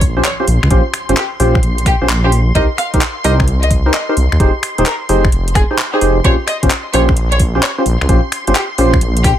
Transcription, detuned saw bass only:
0, 0, Header, 1, 2, 480
1, 0, Start_track
1, 0, Tempo, 461538
1, 735, Time_signature, 4, 2, 24, 8
1, 9765, End_track
2, 0, Start_track
2, 0, Title_t, "Detuned saw bass"
2, 0, Program_c, 0, 39
2, 0, Note_on_c, 0, 34, 80
2, 220, Note_off_c, 0, 34, 0
2, 494, Note_on_c, 0, 34, 100
2, 610, Note_off_c, 0, 34, 0
2, 653, Note_on_c, 0, 37, 98
2, 712, Note_off_c, 0, 37, 0
2, 733, Note_on_c, 0, 34, 97
2, 850, Note_off_c, 0, 34, 0
2, 1133, Note_on_c, 0, 31, 84
2, 1192, Note_off_c, 0, 31, 0
2, 1453, Note_on_c, 0, 34, 83
2, 1650, Note_off_c, 0, 34, 0
2, 1692, Note_on_c, 0, 34, 92
2, 2023, Note_off_c, 0, 34, 0
2, 2092, Note_on_c, 0, 34, 92
2, 2618, Note_off_c, 0, 34, 0
2, 2655, Note_on_c, 0, 36, 98
2, 2771, Note_off_c, 0, 36, 0
2, 3054, Note_on_c, 0, 34, 86
2, 3113, Note_off_c, 0, 34, 0
2, 3375, Note_on_c, 0, 36, 86
2, 4060, Note_off_c, 0, 36, 0
2, 4335, Note_on_c, 0, 36, 101
2, 4451, Note_off_c, 0, 36, 0
2, 4495, Note_on_c, 0, 39, 100
2, 4553, Note_off_c, 0, 39, 0
2, 4575, Note_on_c, 0, 29, 99
2, 4691, Note_off_c, 0, 29, 0
2, 4975, Note_on_c, 0, 27, 83
2, 5033, Note_off_c, 0, 27, 0
2, 5294, Note_on_c, 0, 29, 83
2, 5490, Note_off_c, 0, 29, 0
2, 5537, Note_on_c, 0, 29, 95
2, 5865, Note_off_c, 0, 29, 0
2, 6256, Note_on_c, 0, 29, 100
2, 6451, Note_off_c, 0, 29, 0
2, 6494, Note_on_c, 0, 34, 100
2, 6611, Note_off_c, 0, 34, 0
2, 6893, Note_on_c, 0, 31, 84
2, 6952, Note_off_c, 0, 31, 0
2, 7214, Note_on_c, 0, 34, 84
2, 7899, Note_off_c, 0, 34, 0
2, 8172, Note_on_c, 0, 34, 98
2, 8289, Note_off_c, 0, 34, 0
2, 8333, Note_on_c, 0, 37, 101
2, 8392, Note_off_c, 0, 37, 0
2, 8414, Note_on_c, 0, 34, 99
2, 8530, Note_off_c, 0, 34, 0
2, 8815, Note_on_c, 0, 31, 86
2, 8873, Note_off_c, 0, 31, 0
2, 9134, Note_on_c, 0, 34, 82
2, 9331, Note_off_c, 0, 34, 0
2, 9372, Note_on_c, 0, 34, 92
2, 9703, Note_off_c, 0, 34, 0
2, 9765, End_track
0, 0, End_of_file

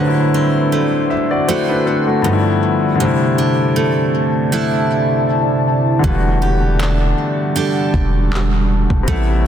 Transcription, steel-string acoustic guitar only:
0, 0, Header, 1, 2, 480
1, 0, Start_track
1, 0, Key_signature, 1, "minor"
1, 0, Tempo, 759494
1, 1897, Time_signature, 4, 2, 24, 8
1, 5985, End_track
2, 0, Start_track
2, 0, Title_t, "Steel-string acoustic guitar"
2, 0, Program_c, 0, 25
2, 0, Note_on_c, 0, 50, 82
2, 0, Note_on_c, 0, 57, 83
2, 0, Note_on_c, 0, 60, 60
2, 215, Note_off_c, 0, 60, 0
2, 217, Note_on_c, 0, 60, 58
2, 269, Note_off_c, 0, 57, 0
2, 457, Note_on_c, 0, 57, 55
2, 935, Note_off_c, 0, 60, 0
2, 936, Note_off_c, 0, 57, 0
2, 939, Note_on_c, 0, 57, 62
2, 942, Note_on_c, 0, 60, 63
2, 946, Note_on_c, 0, 66, 68
2, 1418, Note_on_c, 0, 43, 75
2, 1472, Note_off_c, 0, 60, 0
2, 1474, Note_off_c, 0, 66, 0
2, 1895, Note_off_c, 0, 43, 0
2, 1897, Note_on_c, 0, 48, 82
2, 1916, Note_off_c, 0, 50, 0
2, 2138, Note_on_c, 0, 62, 57
2, 2374, Note_off_c, 0, 57, 0
2, 2377, Note_on_c, 0, 57, 57
2, 2855, Note_off_c, 0, 57, 0
2, 2857, Note_on_c, 0, 57, 61
2, 2859, Note_off_c, 0, 62, 0
2, 2862, Note_on_c, 0, 62, 57
2, 2865, Note_on_c, 0, 64, 68
2, 3816, Note_on_c, 0, 52, 77
2, 3817, Note_off_c, 0, 48, 0
2, 4054, Note_off_c, 0, 64, 0
2, 4056, Note_on_c, 0, 67, 57
2, 4075, Note_off_c, 0, 57, 0
2, 4293, Note_off_c, 0, 62, 0
2, 4295, Note_on_c, 0, 62, 59
2, 4768, Note_off_c, 0, 62, 0
2, 4776, Note_on_c, 0, 62, 62
2, 4777, Note_off_c, 0, 67, 0
2, 4779, Note_on_c, 0, 67, 60
2, 4784, Note_on_c, 0, 69, 68
2, 5737, Note_on_c, 0, 57, 84
2, 5788, Note_off_c, 0, 62, 0
2, 5975, Note_off_c, 0, 67, 0
2, 5985, Note_off_c, 0, 52, 0
2, 5985, Note_off_c, 0, 57, 0
2, 5985, Note_off_c, 0, 69, 0
2, 5985, End_track
0, 0, End_of_file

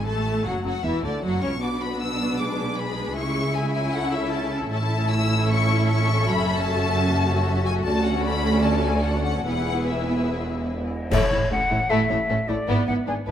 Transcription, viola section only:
0, 0, Header, 1, 2, 480
1, 0, Start_track
1, 0, Key_signature, 3, "major"
1, 0, Tempo, 390371
1, 66, Time_signature, 4, 2, 24, 8
1, 9665, Tempo, 397614
1, 11105, Tempo, 412655
1, 13505, Tempo, 393959
1, 16180, End_track
2, 0, Start_track
2, 0, Title_t, "Viola section"
2, 0, Program_c, 0, 48
2, 55, Note_on_c, 0, 57, 62
2, 534, Note_off_c, 0, 57, 0
2, 538, Note_on_c, 0, 54, 57
2, 771, Note_off_c, 0, 54, 0
2, 785, Note_on_c, 0, 54, 55
2, 883, Note_off_c, 0, 54, 0
2, 1032, Note_on_c, 0, 52, 63
2, 1269, Note_off_c, 0, 52, 0
2, 1276, Note_on_c, 0, 50, 53
2, 1510, Note_on_c, 0, 54, 62
2, 1515, Note_off_c, 0, 50, 0
2, 1745, Note_on_c, 0, 61, 59
2, 1746, Note_off_c, 0, 54, 0
2, 1842, Note_off_c, 0, 61, 0
2, 1991, Note_on_c, 0, 62, 50
2, 1994, Note_on_c, 0, 59, 47
2, 2896, Note_off_c, 0, 59, 0
2, 2936, Note_on_c, 0, 56, 59
2, 3841, Note_off_c, 0, 62, 0
2, 3884, Note_on_c, 0, 64, 59
2, 4797, Note_off_c, 0, 56, 0
2, 4830, Note_on_c, 0, 61, 56
2, 5750, Note_off_c, 0, 61, 0
2, 5756, Note_off_c, 0, 64, 0
2, 5789, Note_on_c, 0, 64, 62
2, 5792, Note_on_c, 0, 61, 62
2, 7673, Note_off_c, 0, 64, 0
2, 7708, Note_on_c, 0, 66, 65
2, 9610, Note_off_c, 0, 61, 0
2, 9646, Note_on_c, 0, 61, 72
2, 11530, Note_off_c, 0, 66, 0
2, 11531, Note_off_c, 0, 61, 0
2, 11577, Note_on_c, 0, 64, 55
2, 11581, Note_on_c, 0, 59, 59
2, 13219, Note_off_c, 0, 64, 0
2, 13221, Note_off_c, 0, 59, 0
2, 13505, Note_on_c, 0, 57, 63
2, 13732, Note_off_c, 0, 57, 0
2, 13750, Note_on_c, 0, 57, 50
2, 13847, Note_off_c, 0, 57, 0
2, 13980, Note_on_c, 0, 57, 47
2, 14077, Note_off_c, 0, 57, 0
2, 14222, Note_on_c, 0, 57, 51
2, 14319, Note_off_c, 0, 57, 0
2, 14455, Note_on_c, 0, 57, 69
2, 14677, Note_off_c, 0, 57, 0
2, 14692, Note_on_c, 0, 57, 51
2, 14790, Note_off_c, 0, 57, 0
2, 14936, Note_on_c, 0, 57, 51
2, 15034, Note_off_c, 0, 57, 0
2, 15170, Note_on_c, 0, 57, 60
2, 15268, Note_off_c, 0, 57, 0
2, 15416, Note_on_c, 0, 59, 71
2, 15645, Note_off_c, 0, 59, 0
2, 15660, Note_on_c, 0, 59, 56
2, 15757, Note_off_c, 0, 59, 0
2, 15900, Note_on_c, 0, 59, 49
2, 15997, Note_off_c, 0, 59, 0
2, 16180, End_track
0, 0, End_of_file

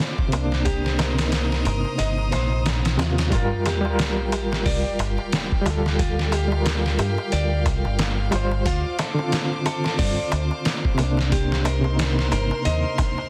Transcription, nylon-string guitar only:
0, 0, Header, 1, 2, 480
1, 0, Start_track
1, 0, Key_signature, -2, "minor"
1, 0, Tempo, 666667
1, 473, Time_signature, 4, 2, 24, 8
1, 9570, End_track
2, 0, Start_track
2, 0, Title_t, "Nylon-string guitar"
2, 0, Program_c, 0, 24
2, 467, Note_on_c, 0, 67, 97
2, 690, Note_off_c, 0, 67, 0
2, 708, Note_on_c, 0, 70, 71
2, 1171, Note_off_c, 0, 70, 0
2, 1188, Note_on_c, 0, 70, 68
2, 1411, Note_off_c, 0, 70, 0
2, 1427, Note_on_c, 0, 75, 103
2, 1660, Note_off_c, 0, 75, 0
2, 1667, Note_on_c, 0, 72, 70
2, 1890, Note_off_c, 0, 72, 0
2, 2388, Note_on_c, 0, 65, 98
2, 2611, Note_off_c, 0, 65, 0
2, 2634, Note_on_c, 0, 67, 73
2, 3094, Note_off_c, 0, 67, 0
2, 3111, Note_on_c, 0, 67, 70
2, 3332, Note_off_c, 0, 67, 0
2, 3351, Note_on_c, 0, 74, 98
2, 3582, Note_off_c, 0, 74, 0
2, 4314, Note_on_c, 0, 65, 100
2, 4534, Note_off_c, 0, 65, 0
2, 4555, Note_on_c, 0, 67, 70
2, 5014, Note_off_c, 0, 67, 0
2, 5029, Note_on_c, 0, 67, 71
2, 5251, Note_off_c, 0, 67, 0
2, 5273, Note_on_c, 0, 74, 100
2, 5503, Note_off_c, 0, 74, 0
2, 6233, Note_on_c, 0, 65, 107
2, 6453, Note_off_c, 0, 65, 0
2, 6470, Note_on_c, 0, 69, 71
2, 6932, Note_off_c, 0, 69, 0
2, 6951, Note_on_c, 0, 69, 73
2, 7172, Note_off_c, 0, 69, 0
2, 7189, Note_on_c, 0, 74, 101
2, 7421, Note_off_c, 0, 74, 0
2, 8151, Note_on_c, 0, 67, 101
2, 8372, Note_off_c, 0, 67, 0
2, 8390, Note_on_c, 0, 70, 77
2, 8852, Note_off_c, 0, 70, 0
2, 8869, Note_on_c, 0, 70, 74
2, 9091, Note_off_c, 0, 70, 0
2, 9108, Note_on_c, 0, 75, 94
2, 9341, Note_off_c, 0, 75, 0
2, 9570, End_track
0, 0, End_of_file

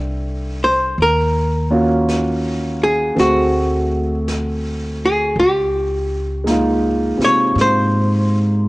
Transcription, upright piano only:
0, 0, Header, 1, 2, 480
1, 0, Start_track
1, 0, Tempo, 1098901
1, 425, Time_signature, 4, 2, 24, 8
1, 3793, End_track
2, 0, Start_track
2, 0, Title_t, "Upright piano"
2, 0, Program_c, 0, 0
2, 0, Control_c, 0, 64, 127
2, 0, Note_on_c, 0, 57, 40
2, 0, Note_on_c, 0, 60, 36
2, 0, Note_on_c, 0, 62, 35
2, 0, Note_on_c, 0, 67, 48
2, 0, Note_on_c, 0, 69, 37
2, 0, Note_on_c, 0, 76, 33
2, 421, Note_off_c, 0, 62, 0
2, 424, Note_off_c, 0, 57, 0
2, 424, Note_off_c, 0, 60, 0
2, 425, Note_off_c, 0, 76, 0
2, 426, Note_off_c, 0, 67, 0
2, 429, Note_off_c, 0, 69, 0
2, 431, Control_c, 0, 64, 0
2, 505, Control_c, 0, 64, 127
2, 743, Note_on_c, 0, 58, 45
2, 746, Note_on_c, 0, 61, 41
2, 748, Note_on_c, 0, 65, 44
2, 749, Note_on_c, 0, 66, 51
2, 1377, Note_on_c, 0, 57, 39
2, 1382, Note_on_c, 0, 60, 35
2, 1385, Note_off_c, 0, 58, 0
2, 1386, Note_off_c, 0, 66, 0
2, 1387, Note_off_c, 0, 61, 0
2, 1388, Note_off_c, 0, 65, 0
2, 1390, Control_c, 0, 64, 0
2, 1392, Note_on_c, 0, 66, 35
2, 1397, Note_on_c, 0, 68, 42
2, 1461, Control_c, 0, 64, 127
2, 2339, Note_off_c, 0, 57, 0
2, 2342, Note_off_c, 0, 60, 0
2, 2347, Note_off_c, 0, 66, 0
2, 2348, Control_c, 0, 64, 0
2, 2349, Note_off_c, 0, 68, 0
2, 2425, Control_c, 0, 64, 127
2, 2813, Note_on_c, 0, 56, 46
2, 2823, Note_on_c, 0, 58, 43
2, 2827, Note_on_c, 0, 63, 44
2, 2838, Note_on_c, 0, 65, 50
2, 3134, Note_on_c, 0, 48, 36
2, 3141, Note_off_c, 0, 65, 0
2, 3148, Note_on_c, 0, 65, 39
2, 3793, Note_off_c, 0, 48, 0
2, 3793, Note_off_c, 0, 56, 0
2, 3793, Note_off_c, 0, 58, 0
2, 3793, Note_off_c, 0, 63, 0
2, 3793, Note_off_c, 0, 65, 0
2, 3793, End_track
0, 0, End_of_file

